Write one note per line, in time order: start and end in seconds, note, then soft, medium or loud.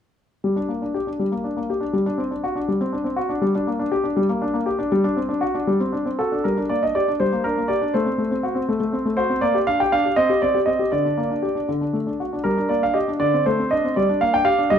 0.44 0.56 G3 soft
0.56 0.70 D4 soft
0.69 0.82 A#3 soft
0.82 0.95 D4 soft
0.94 1.08 G4 soft
1.07 1.20 D4 soft
1.19 1.32 G3 soft
1.32 1.45 A#3 soft
1.44 1.57 D4 soft
1.57 1.70 A#3 soft
1.70 1.83 G4 soft
1.81 1.94 D4 soft
1.93 2.06 G3 soft
2.06 2.19 D4 soft
2.18 2.31 C4 soft
2.31 2.44 D4 soft
2.44 2.57 F#4 soft
2.56 2.69 D4 soft
2.68 2.80 G3 soft
2.81 2.94 C4 soft
2.93 3.06 D4 soft
3.04 3.18 C4 soft
3.16 3.30 F#4 soft
3.29 3.42 D4 soft
3.42 3.54 G3 soft
3.55 3.68 D4 soft
3.67 3.80 A#3 soft
3.79 3.92 D4 soft
3.92 4.05 G4 soft
4.04 4.17 D4 soft
4.17 4.28 G3 soft
4.29 4.42 A#3 soft
4.42 4.54 D4 soft
4.54 4.67 A#3 soft
4.66 4.79 G4 soft
4.79 4.91 D4 soft
4.92 5.04 G3 medium
5.04 5.17 D4 soft
5.17 5.30 C4 soft
5.29 5.42 D4 soft
5.41 5.55 F#4 soft
5.55 5.68 D4 soft
5.67 5.80 G3 soft
5.80 5.94 C4 soft
5.93 6.06 D4 soft
6.05 6.19 C4 soft
6.19 6.33 F#4 soft
6.19 6.44 A4 soft
6.32 6.45 D4 soft
6.44 6.57 G3 soft
6.44 6.59 A#4 soft
6.58 6.71 D4 soft
6.69 6.83 A#3 soft
6.69 6.82 D5 soft
6.83 6.96 D4 soft
6.83 6.95 D#5 soft
6.95 7.08 G4 soft
6.95 7.10 D5 medium
7.08 7.21 D4 soft
7.20 7.32 G3 soft
7.20 7.45 C5 medium
7.33 7.45 A#3 soft
7.44 7.58 D4 soft
7.44 7.69 A#4 medium
7.57 7.70 A#3 soft
7.68 7.82 G4 soft
7.68 7.93 D5 medium
7.81 7.94 D4 soft
7.94 8.06 A3 soft
7.94 9.15 C5 medium
8.06 8.19 C4 soft
8.18 8.31 A3 soft
8.31 8.44 C4 soft
8.43 8.56 F#4 soft
8.55 8.68 C4 soft
8.69 8.79 A3 soft
8.80 8.93 A3 soft
8.93 9.06 C4 soft
9.05 9.18 A3 soft
9.17 9.30 F#4 soft
9.17 9.42 C5 medium
9.30 9.42 C4 soft
9.41 9.54 A#3 soft
9.41 9.57 D5 medium
9.55 9.68 G4 soft
9.67 9.80 D4 soft
9.67 9.80 F5 medium
9.80 9.93 G4 soft
9.80 9.93 G5 medium
9.92 10.06 D4 soft
9.92 10.15 F5 medium
10.05 10.18 G4 soft
10.16 10.29 C4 medium
10.16 10.40 D#5 medium
10.30 10.43 G4 soft
10.42 10.56 C4 soft
10.42 10.57 D5 medium
10.55 10.68 G4 soft
10.66 10.81 C4 soft
10.66 10.90 D#5 medium
10.79 10.93 G4 soft
10.92 11.05 D3 soft
10.92 11.68 D5 medium
11.05 11.19 D4 soft
11.17 11.31 A#3 soft
11.30 11.44 D4 soft
11.42 11.57 G4 soft
11.55 11.69 D4 soft
11.69 11.81 D3 soft
11.81 11.95 D4 soft
11.93 12.08 A3 soft
12.07 12.21 D4 soft
12.20 12.34 F#4 soft
12.33 12.46 D4 soft
12.44 12.57 G3 soft
12.44 12.67 A#4 medium
12.57 12.71 D4 soft
12.69 12.83 A#3 soft
12.69 12.83 D5 medium
12.82 12.96 D4 soft
12.82 12.96 F5 medium
12.94 13.08 G4 soft
12.94 13.10 D#5 medium
13.08 13.21 D4 soft
13.20 13.33 D3 soft
13.20 13.43 D5 medium
13.34 13.47 C4 soft
13.46 13.60 A3 soft
13.46 13.69 C5 medium
13.59 13.72 C4 soft
13.71 13.85 D4 soft
13.71 13.94 D#5 medium
13.85 13.97 C4 soft
13.96 14.09 G3 soft
13.96 14.21 D5 medium
14.09 14.22 D4 soft
14.21 14.35 A#3 soft
14.21 14.34 F5 medium
14.33 14.47 D4 soft
14.33 14.46 G5 medium
14.45 14.59 G4 soft
14.45 14.70 F5 medium
14.58 14.72 D4 soft
14.70 14.79 G3 soft
14.70 14.79 D#5 medium